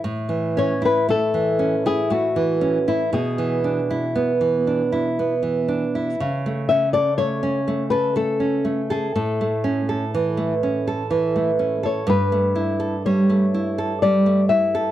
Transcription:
X:1
M:3/4
L:1/16
Q:1/4=60
K:A
V:1 name="Nylon-string guitar"
z2 c B A3 G F3 E | G12 | z2 e d c3 B A3 G | A8- A3 c |
B4 c4 d2 e2 |]
V:2 name="Nylon-string guitar"
A,, E, C E A, E, C E A, E, C E | B,, E, D E B, E, D E B, E, D E | C, A, C A A, C A, A A, C A, A | A,, A, C A E, A, C A E, A, C A |
=G,, A, E A =G, A, E A G, A, E A |]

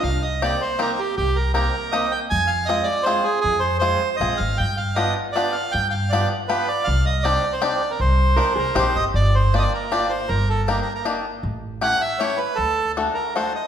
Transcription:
X:1
M:3/4
L:1/16
Q:1/4=158
K:Cm
V:1 name="Bandoneon"
f2 e2 d2 c2 B2 G2 | G2 B2 B4 e2 g2 | a2 f2 e2 d2 c2 A2 | A2 c2 c4 e2 f2 |
g2 f2 e2 z2 d2 f2 | g3/2 g/2 f2 d2 z2 =B2 d2 | f2 e2 d3 c d3 B | c6 B2 c2 e2 |
[K:Gm] d2 c2 d/2 e/2 d B2 d2 c2 | B2 A2 (3B2 B2 B2 z4 | z4 ^f2 =e2 ^c2 =B2 | A4 z2 B2 c2 e2 |]
V:2 name="Hollow-body jazz guitar"
z12 | z12 | z12 | z12 |
z12 | z12 | z12 | z4 B2 A2 G4 |
[K:Gm] z12 | z12 | z12 | z12 |]
V:3 name="Five-string banjo"
z4 [B,CEG]2 z2 [B,CEG]2 z2 | z4 [B,CEG]2 z2 [B,CEG]2 z2 | z4 [A,CFA]2 z2 [A,CFA]2 z2 | z4 [A,CFA]2 z2 [A,CFA]2 z2 |
z4 [=B,DFG]2 z2 [B,DFG]2 z2 | z4 [=B,DFG]2 z2 [B,DFG]2 z2 | z4 [CDEG]2 z2 [CDEG]2 z2 | z4 [CDEG]2 z2 [CDEG]2 z2 |
[K:Gm] z4 [B,DFG]2 z2 [B,DFG]2 z2 | z4 [B,DEG]2 z2 [B,DEG]2 z2 | z4 [A,^C=EG]2 z2 [A,CEG]2 z2 | z4 [A,D^FA]2 z2 [A,DFA]2 z2 |]
V:4 name="Upright bass" clef=bass
C,,8 z4 | C,,8 z4 | F,,8 z4 | F,,8 B,,,2 A,,,2 |
G,,8 z4 | G,,8 z4 | C,,8 z4 | C,,6 C,,2 B,,,2 G,,,2 |
[K:Gm] G,,,8 z4 | G,,,8 z4 | A,,,8 z4 | D,,8 z4 |]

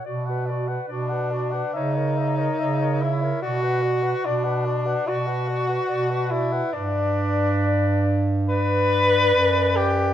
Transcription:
X:1
M:4/4
L:1/16
Q:1/4=72
K:Bm
V:1 name="Clarinet"
d f d f d f d f e c e c e c e c | d f d f d f d f d f d f d f d f | d8 d8 |]
V:2 name="Clarinet"
F B F B F B F B c ^A c A c A c A | F B F B F B F B F B F B F B F B | B8 B8 |]
V:3 name="Tenor saxophone"
z4 D4 ^D6 E2 | F4 D4 F6 E2 | D6 z2 B6 G2 |]
V:4 name="Bass clarinet" clef=bass
B,,4 B,,4 C,4 C,4 | B,,4 B,,4 B,,4 B,,4 | G,,12 F,,4 |]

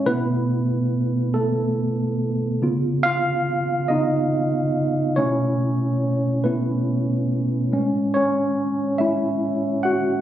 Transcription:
X:1
M:6/8
L:1/8
Q:3/8=47
K:Bmix
V:1 name="Tine electric piano"
[B,B]3 [A,A]2 z | z [^E^e]2 [Dd]3 | [Cc]3 [B,B]2 z | z [Cc]2 [Ee]2 [Ff] |]
V:2 name="Tine electric piano"
[B,,A,E]6 | [C,B,^E]3 [C,B,E] z2 | [B,,A,E]3 [B,,A,E] z2 | [A,,G,C] z2 [A,,G,C] z2 |]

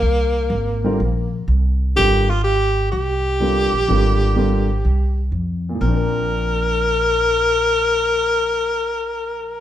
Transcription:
X:1
M:4/4
L:1/8
Q:"Swing" 1/4=125
K:Ablyd
V:1 name="Tenor saxophone"
B,6 z2 | G F G2 G4- | G6 z2 | B8- |
B8 |]
V:2 name="Grand piano"
z3 [D,G,CFB] z4 | [D,G,CFB] z4 z [D,G,CFB] z | [D,G,CFB]2 [D,G,CFB] z4 z | [B,,F,CDB]8- |
[B,,F,CDB]8 |]
V:3 name="Upright bass" clef=bass
C,,2 A,,,2 B,,,2 C,,2 | A,,,4 C,,3 B,,, | A,,,4 C,,2 F,,2 | B,,,8- |
B,,,8 |]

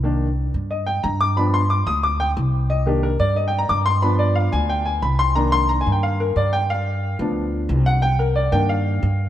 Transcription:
X:1
M:4/4
L:1/8
Q:1/4=180
K:Cm
V:1 name="Upright piano"
z4 e g b d' | =b c' d' e' d' g z2 | e G B d (3e g b d' c' | =b d f a g a b c' |
b c' (3b a g f B d g | f3 z4 ^f | g B d g f4 |]
V:2 name="Upright piano"
[E,B,D] z6 z | [F,=B,D] z6 z | z [E,B,D] z6 | [F,=B,D]8 |
[E,B,D]8 | z3 [F,=B,D]4- [F,B,D] | z3 [E,B,D]3 z2 |]
V:3 name="Upright bass" clef=bass
C,,3 G,,3 G,,2- | G,,3 D,,3 C,,2- | C,,3 G,,3 G,,2- | G,,3 D,,3 C,,2- |
C,,3 G,,3 G,,2- | G,,3 D,,3 C,,2- | C,,3 G,,3 G,,2 |]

